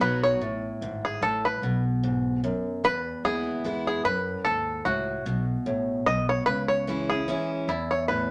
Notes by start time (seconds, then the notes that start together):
0.00 B1 F#3 B3 D#4 F#4 B4
0.23 C#5
0.41 A1 A2
0.81 G#1 G#2
1.05 G#4
1.21 A1 A2 A4
1.45 B4
1.62 B1 B2
2.03 G#2
2.44 F#2
2.84 E2 B4
3.24 D#2 G#3 B3 E4 G#4
3.64 E2 E3 G#3 B3 E4
3.87 G#4
4.04 F#2 B4
4.45 D#2 G#2 A4
4.85 C#2 A2 F#4
5.26 B1 B2
5.66 A1 A2
6.06 B1 B2 D#5
6.29 C#5
6.46 C#2 C#3 B4
6.68 C#5
6.87 E3 G#3 C#4 E4
7.10 C#4 E4 G#4
7.28 E3 G#3 C#4 E4
7.68 E2 E4
7.91 C#5
8.08 A2 B4